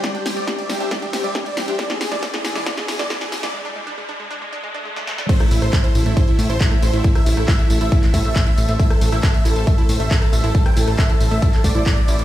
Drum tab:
CC |----------------|----------------|----------------|x---------------|
HH |xxoxxxoxxxoxxxox|xxo-xxoxxxoxxxox|----------------|xxoxxxoxxxoxxxox|
TB |xxxxxxxxxxxxxxxx|xxxxxxxxxxxxxxxx|----------------|xxxxxxxxxxxxxxxx|
CP |----------------|----------------|----------------|----x-------x---|
SD |o-o-o-o-o-o-o-o-|oooooooooooooooo|-------------ooo|-r-r---------r--|
BD |o---o---o-o-o---|o---o---o---o---|----------------|o---o---o---o---|

CC |----------------|----------------|----------------|
HH |xxoxxxoxxxoxxxox|xxoxxxoxxxoxxxox|xxoxxxoxxxo-xxox|
TB |xxxxxxxxxxxxxxxx|xxxxxxxxxxxxxxxx|xxxxxxxxxxxxxxxx|
CP |----x----x--x---|----x-------x---|----x----x--x---|
SD |-r-r------------|-r-r---------r--|-r-r------------|
BD |o---o---o-o-o---|o---o---o---o---|o---o---o-o-o---|